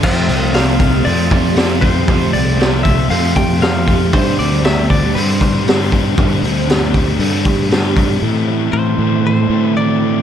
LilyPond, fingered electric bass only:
\new Staff \with { instrumentName = "Fingered electric bass" } { \clef bass \time 4/4 \key f \lydian \tempo 4 = 117 f,8 c,4. f,2 | f,8 c,4. f,2 | g,8 d,4. g,2 | g,8 d,4. g,2 |
a,4 a,8 a,4 a,4. | }